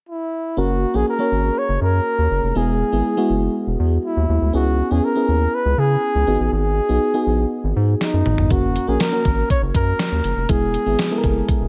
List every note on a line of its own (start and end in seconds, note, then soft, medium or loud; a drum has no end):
0.09 0.60 E4 medium
0.57 0.85 F#1 medium
0.57 0.84 A#3 medium
0.57 0.84 C#4 medium
0.57 0.84 F#4 medium
0.57 0.97 F#4 medium
0.57 0.85 A#4 medium
0.94 1.04 A#1 medium
0.94 1.12 A#3 medium
0.94 1.12 C#4 medium
0.94 1.12 F#4 medium
0.94 1.13 G#4 medium
0.94 1.07 G#4 medium
1.08 1.60 A#4 medium
1.19 1.90 A#3 medium
1.19 1.91 C#4 medium
1.19 1.91 F#4 medium
1.19 1.91 C#5 medium
1.32 1.50 G#1 medium
1.58 1.82 C#5 medium
1.69 1.78 F#1 loud
1.81 2.00 F#2 loud
1.81 2.59 A#4 loud
2.18 2.28 D#2 medium
2.31 2.40 F#1 medium
2.43 2.53 F1 medium
2.55 2.83 E1 loud
2.55 2.82 G#3 medium
2.55 2.82 B3 medium
2.55 2.83 E4 medium
2.55 2.83 G#4 medium
2.55 3.56 G#4 medium
2.92 3.02 G#1 medium
2.92 3.10 G#3 medium
2.92 3.11 B3 medium
2.92 3.11 E4 medium
2.92 3.11 G#4 medium
3.17 3.89 G#3 medium
3.17 3.89 B3 medium
3.17 3.89 E4 medium
3.17 3.89 F#4 medium
3.30 3.49 F#1 medium
3.67 3.76 E1 medium
3.79 3.98 E2 loud
4.05 4.51 E4 medium
4.17 4.26 D#2 medium
4.29 4.38 D#2 medium
4.42 4.51 D2 medium
4.53 4.82 C#2 medium
4.53 4.80 B3 medium
4.53 4.81 C#4 medium
4.53 4.81 E4 medium
4.53 4.94 F#4 medium
4.53 4.81 G#4 medium
4.91 5.01 E2 medium
4.91 5.09 B3 medium
4.91 5.09 C#4 medium
4.91 5.09 E4 medium
4.91 5.09 G#4 medium
4.91 5.06 G#4 medium
5.04 5.56 A#4 loud
5.15 5.87 B3 medium
5.15 5.87 C#4 medium
5.15 5.87 E4 medium
5.15 5.88 G#4 medium
5.28 5.47 D#2 medium
5.54 5.80 B4 medium
5.65 5.75 C#2 loud
5.78 5.96 C#3 medium
5.78 6.53 G#4 loud
6.15 6.24 C#2 medium
6.27 6.37 G#1 medium
6.27 6.77 B3 medium
6.27 6.77 D#4 medium
6.27 6.77 F#4 medium
6.27 6.78 G#4 medium
6.40 6.49 A1 medium
6.52 6.80 G#1 loud
6.52 7.48 G#4 medium
6.89 6.99 B1 medium
6.89 7.07 B3 medium
6.89 7.07 D#4 medium
6.89 7.08 F#4 medium
6.89 7.08 G#4 medium
7.14 7.85 B3 medium
7.14 7.86 D#4 medium
7.14 7.86 F#4 medium
7.14 7.86 G#4 medium
7.27 7.45 A#1 medium
7.64 7.73 G#1 medium
7.76 7.95 G#2 loud
8.01 8.53 D#4 medium
8.01 snare medium
8.14 8.23 F#2 medium
8.26 8.35 G#1 medium
8.26 mid tom medium
8.38 8.48 G1 medium
8.38 floor tom medium
8.50 8.79 F#1 loud
8.50 8.77 A#3 medium
8.50 8.77 C#4 medium
8.50 8.78 F#4 medium
8.50 8.90 F#4 medium
8.50 8.78 A#4 medium
8.50 kick loud
8.50 closed hi-hat medium
8.76 closed hi-hat medium
8.87 8.97 A#1 medium
8.87 9.05 A#3 medium
8.87 9.06 C#4 medium
8.87 9.06 F#4 medium
8.87 9.03 G#4 medium
8.87 9.06 A#4 medium
9.00 9.50 A#4 medium
9.00 snare loud
9.00 closed hi-hat medium
9.12 9.84 A#3 medium
9.12 9.84 C#4 medium
9.12 9.84 F#4 medium
9.12 9.84 A#4 medium
9.25 9.44 G#1 medium
9.25 kick medium
9.25 closed hi-hat medium
9.50 9.62 C#5 medium
9.50 kick medium
9.50 closed hi-hat medium
9.62 9.72 F#1 loud
9.74 9.93 F#2 loud
9.74 10.52 A#4 loud
9.74 kick medium
9.74 closed hi-hat medium
9.99 snare loud
9.99 closed hi-hat medium
10.12 10.21 D#2 medium
10.24 10.34 F#1 medium
10.24 closed hi-hat medium
10.37 10.46 F1 medium
10.49 10.77 E1 loud
10.49 10.76 G#3 medium
10.49 10.76 B3 medium
10.49 10.76 E4 medium
10.49 10.76 G#4 medium
10.49 11.49 G#4 medium
10.49 kick loud
10.49 closed hi-hat medium
10.74 closed hi-hat medium
10.86 10.96 G#1 medium
10.86 11.04 G#3 medium
10.86 11.04 B3 medium
10.86 11.04 E4 medium
10.86 11.05 G#4 medium
10.99 snare loud
10.99 closed hi-hat medium
11.11 11.68 G#3 medium
11.11 11.68 B3 medium
11.11 11.68 E4 medium
11.11 11.18 A4 medium
11.18 11.68 A#4 medium
11.24 11.42 F#1 medium
11.24 kick medium
11.24 closed hi-hat medium
11.49 kick medium
11.49 closed hi-hat medium
11.61 11.68 E1 medium